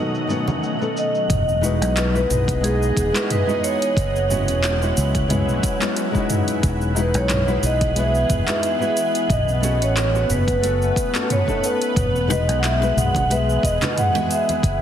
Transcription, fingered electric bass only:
1.30 E1
1.82 B1
2.30 B1
2.97 E1
3.97 F#1
4.49 E1
4.97 C#2
6.63 E1
7.15 B1
7.63 B1
8.30 E1
9.30 B1
9.81 A1
10.30 F#1
11.96 E1
12.49 B1
12.97 B1
13.63 E1
14.63 F#1

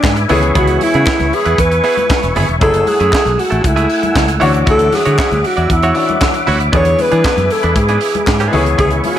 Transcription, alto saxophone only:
Already playing: D4
0.58 F#4
0.83 E4
1.34 G#4
1.60 B4
2.63 A4
2.89 G#4
3.40 F#4
3.66 E4
4.70 A4
4.94 G#4
5.47 F#4
5.73 E4
6.76 C#5
7.01 B4
7.52 A4
7.78 G#4
8.80 G#4
9.06 F#4

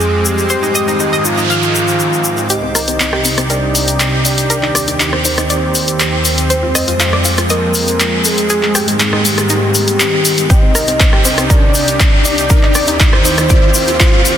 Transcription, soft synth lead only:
Already playing: G#4
0.25 G4
1.25 F4
2.50 D#5
3.50 D5
4.25 D5
5.25 C5
6.50 C5
7.50 A#4
8.25 G#4
9.25 G4
10.50 D#5
11.50 D5
12.25 D5
13.25 C5

